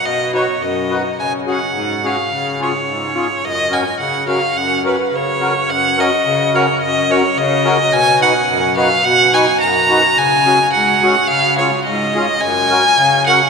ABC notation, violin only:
X:1
M:2/4
L:1/8
Q:1/4=107
K:F#
V:1 name="Violin"
d c d2 | g f2 e- | e c3 | d g f e |
f B c2 | f d2 c | d c d2 | g f2 e |
f g a2 | g2 f2 | e c d2 | g3 f |]